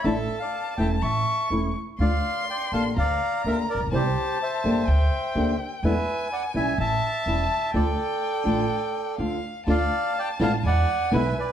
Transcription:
X:1
M:4/4
L:1/16
Q:1/4=125
K:Dm
V:1 name="Violin"
a8 ^c'6 z2 | c'8 b8 | a8 g8 | ^g8 a8 |
g12 f4 | a8 ^g8 |]
V:2 name="Bandoneon"
[Ae]3 [df]3 [eg]2 [ea]4 z4 | [df]4 [dg]2 [fa]2 [df]4 [Be]2 [Bd]2 | [Gc]4 [ce]8- [ce]2 z2 | [=Be]4 [d^f]2 [e^g]2 [ea]8 |
[Ad]12 z4 | [df]4 [dg]2 [fa]2 [d^f]4 [=Be]2 [Bd]2 |]
V:3 name="String section"
z16 | z16 | z16 | z16 |
z16 | [A,DF]2 z4 [A,DF]2 [^G,DE]2 z2 [G,DE]2 z2 |]
V:4 name="Nylon-string guitar"
[D,A,DE]2 z4 [E,A,^CE]2 z4 [E,A,CE]2 z2 | [D,A,DF]2 z4 [D,B,DG]2 z4 [D,B,DG]2 z2 | [C,E,G,CE]2 z4 [D,B,DG]2 z4 [D,B,DG]2 z2 | [=B,,D,^G,=B,E]2 z4 [E,=G,^CE]2 z4 [E,G,CE]2 z2 |
[D,A,DF]2 z4 [D,A,DF]2 z4 [D,A,DF]2 z2 | [D,A,DF]2 z4 [=B,,D,^G,=B,E]2 z4 [B,,D,G,B,E]2 z2 |]
V:5 name="Upright bass" clef=bass
A,,,3/2 z4 z/2 E,,,3/2 z/2 A,,,3/2 z2 z/2 E,,,3/2 z2 z/2 | D,,3/2 z4 z/2 A,,,3/2 z/2 D,,3/2 z2 z/2 D,,3/2 z A,,,/2 B,,,/2 =B,,,/2 | C,,3/2 z4 z/2 G,,,3/2 z/2 D,,3/2 z2 z/2 D,,3/2 z2 z/2 | E,,3/2 z4 z/2 =B,,,3/2 z/2 A,,,3/2 z2 z/2 E,,,3/2 z2 z/2 |
D,,3/2 z4 z/2 A,,,3/2 z4 z/2 D,,3/2 z2 z/2 | D,,3/2 z4 z/2 A,,,3/2 z/2 E,,3/2 z2 z/2 =B,,,3/2 z2 z/2 |]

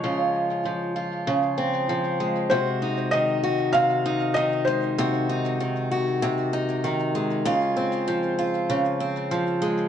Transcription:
X:1
M:4/4
L:1/8
Q:1/4=97
K:Db
V:1 name="Felt piano"
d2 z6 | c2 e2 f2 e c- | c2 z6 | z8 |]
V:2 name="Steel-string acoustic guitar" clef=bass
[D,F,A,F]2 F, F D, C F, A, | [C,G] E E, G C, E E, A, | [C,G] E E, G C, E E, A, | [D,F] C F, F D, C F, A, |]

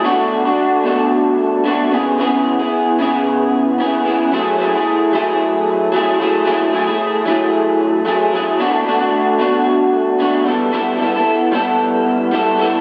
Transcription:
X:1
M:4/4
L:1/16
Q:"Swing 16ths" 1/4=112
K:F#m
V:1 name="Clean electric guitar"
[B,,A,DF]3 [A,DF]3 [B,,A,DF]6 [B,,A,DF]2 [C,B,EG]2 | [C,B,EG]3 [B,EG]3 [C,B,EG]6 [C,B,EG]2 [C,B,EG]2 | [F,A,EG]2 [F,A,EG] [A,EG]3 [F,A,EG]6 [F,A,EG]2 [F,A,EG]2 | [F,A,EG]2 [F,A,EG] [A,EG]3 [F,A,EG]6 [F,A,EG]2 [F,A,EG]2 |
[B,,A,DF]2 [B,,A,DF] [A,DF]3 [B,,A,DF]6 [B,,A,DF]2 [=G,B,EA]2 | [=G,B,EA]2 [G,B,EA] [B,EA]3 [G,B,EA]6 [G,B,EA]2 [G,B,EA]2 |]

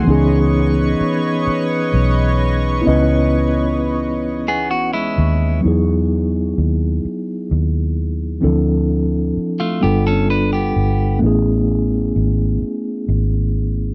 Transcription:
X:1
M:6/8
L:1/16
Q:3/8=43
K:C#m
V:1 name="Analog synth pad"
[Bcdc']12- | [Bcdc']12 | z12 | z12 |
z12 |]
V:2 name="Clean electric guitar"
z12 | z6 z [B,G] F [G,E]3 | z12 | z4 z [A,=F] [B,=G] [CA] [=DB] [B,G]3 |
z12 |]
V:3 name="Tine electric piano"
[E,B,CDG]12 | [B,CEBd]12 | [F,B,DEG]12 | [E,=F,=C=DEA]6 [=G,B,D=FA]6 |
[A,B,CEG]12 |]
V:4 name="Fingered electric bass" clef=bass
C,,4 z4 B,,,4 | C,,8 B,,,2 D,,2 | E,,4 D,,2 z2 D,,4 | =D,,4 z2 =G,,,4 G,,,2 |
A,,,4 G,,,2 z2 G,,,4 |]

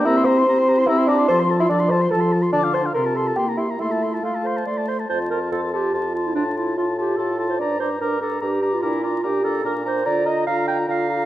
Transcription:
X:1
M:3/4
L:1/16
Q:1/4=145
K:F
V:1 name="Flute"
e'2 c'6 e'2 d'2 | c'3 e' d'2 c'2 a2 z2 | d'2 c'2 b2 a2 g2 e2 | e4 f4 z4 |
c'2 c'2 c'2 c'2 c'2 c'2 | c'2 c'2 c'2 c'2 c'2 c'2 | d'2 d'2 d'2 d'2 d'2 d'2 | d'2 d'2 d'2 d'2 d'2 d'2 |
[K:Bbmix] b2 b2 b2 b2 b2 b2 |]
V:2 name="Oboe"
b c' b c' b c' b c' b c' b c' | a c' a c' a c' a c' a c' a c' | a f a f c' a c' a c' b c' b | c' a c' a c' a c' a c' a c' a |
a2 a2 a2 a2 a2 a2 | a2 a2 a2 a2 a2 a2 | b2 b2 b2 b2 b2 b2 | b2 b2 b2 b2 b2 b2 |
[K:Bbmix] b2 b2 b2 b2 b2 b2 |]
V:3 name="Clarinet"
G E G E G E G E G E G E | A F A F A F A F A F A F | D F D F A F A F G E G E | A F A F A2 c2 d2 c2 |
c2 B2 A2 G2 F3 E | D2 E2 F2 G2 A3 c | d2 c2 B2 A2 G3 F | E2 F2 G2 A2 B2 c2 |
[K:Bbmix] d2 e2 f2 g2 f4 |]
V:4 name="Bassoon"
E2 c6 E2 D2 | c3 E D2 c2 A2 z2 | D2 c2 B2 A2 G2 E2 | E4 F4 z4 |
F,,4 F,,4 F,,4 | A,,4 A,,4 A,,4 | G,,4 G,,4 G,,4 | B,,4 B,,4 B,,4 |
[K:Bbmix] D,4 D,4 D,4 |]
V:5 name="French horn"
C4 C4 C4 | F,4 F,4 F,4 | D,4 C,4 B,4 | A,4 A,4 A,4 |
F2 F2 F2 F2 F2 F2 | F2 F2 F2 F2 F2 F2 | D2 D2 D2 D2 D2 D2 | D2 D2 D2 D2 D2 D2 |
[K:Bbmix] F2 F2 F2 F2 F2 F2 |]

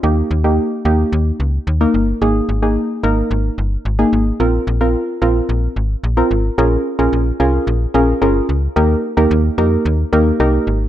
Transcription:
X:1
M:4/4
L:1/16
Q:1/4=110
K:Ebmix
V:1 name="Synth pluck"
[B,EG]2 z [B,EG]2 z [B,EG]4 z3 [B,EB]2 z | [B,EA]2 z [B,EA]2 z [B,EB]4 z3 [B,EA]2 z | [CFB]2 z [CFB]2 z [CFB]4 z3 [CFB]2 z | [DFAB]2 z [DFAB]2 z [DFAB]2 z2 [DFAB] z [DFAB]2 z2 |
[B,EGB]2 z [B,EGB]2 z [B,EGB]2 z2 [B,EGB] z [B,EGB]2 z2 |]
V:2 name="FM bass" clef=bass
E,,2 E,,3 z E,,2 E,,2 D,,2 E,,2 G,,,2 | A,,,2 A,,,3 z A,,,2 A,,,2 G,,,2 A,,,2 A,,,2 | B,,,2 B,,,3 z B,,,2 B,,,2 A,,,2 B,,,2 A,,,2 | B,,,2 z B,,, B,,,2 C,,2 B,,,2 B,,,2 G,,,2 D,,2 |
E,,2 z E,, E,,2 F,,2 E,,2 E,,2 C,,2 A,,,2 |]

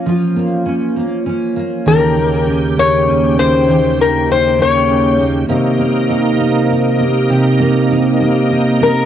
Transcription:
X:1
M:6/8
L:1/8
Q:3/8=66
K:Ebmix
V:1 name="Resonator guitar played with a steel bar"
z6 | B3 d2 c- | c B c d2 z | z6 |
z4 z B |]
V:2 name="Steel-string acoustic guitar"
[F,B,DF] B, D B, D B, | [E,G] B, D B, D B, | [E,G] B, D B, D B, | [C,G] B, E B, E B, |
[C,G] B, E B, E B, |]
V:3 name="Tonewheel organ" clef=bass
z6 | [E,,D,G]6- | [E,,D,G]6 | [C,B,E]6- |
[C,B,E]6 |]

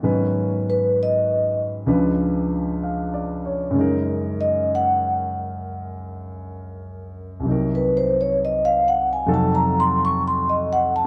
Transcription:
X:1
M:4/4
L:1/16
Q:"Swing" 1/4=65
K:Gblyd
V:1 name="Vibraphone"
z2 _c2 e2 z8 z2 | z2 e2 g2 z8 z2 | z _c =c d e f g a =a b c' d' c' e g a |]
V:2 name="Grand piano"
z12 (3f2 =d2 _d2 | z16 | z16 |]
V:3 name="Grand piano" clef=bass
[A,,E,G,_CD_c]8 [D,,D,F,=Dc]8 | [G,,D,A,EB]16 | [C,,C,G,EB]8 [F,,C,G,E=A]8 |]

